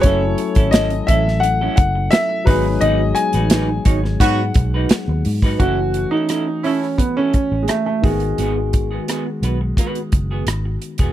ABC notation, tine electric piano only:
X:1
M:4/4
L:1/8
Q:1/4=86
K:F#dor
V:1 name="Tine electric piano"
[F,A,CEA]6- [F,A,CEA] [F,G,B,DG]- | [F,G,B,DG]6- [F,G,B,DG] z | [E,A,CF]6- [E,A,CF] [D,G,B,F]- | [D,G,B,F]6- [D,G,B,F] z |]